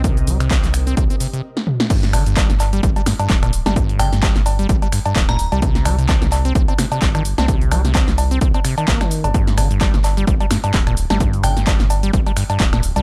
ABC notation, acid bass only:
X:1
M:4/4
L:1/16
Q:"Swing 16ths" 1/4=129
K:Gm
V:1 name="Acid bass" clef=bass
C,2 G, C, C C, z C z C C, C, z4 | G,,2 D, G,, G, G,, z G, z G, G,, G,, G, B,, z G, | G,,2 D, G,, G, G,, z G, G, G, G,, G,, G, B,, z G, | C,2 G, C, C C, z C z C C, C, C E, z C |
C,2 G, C, C C, z C z C C, E, B, E,2 C, | G,,2 D, G,, G, G,, z G, z G, G,, G,, G, B,, z G, | G,,2 D, G,, G, G,, z G, z G, G,, G,, G, B,, z G, |]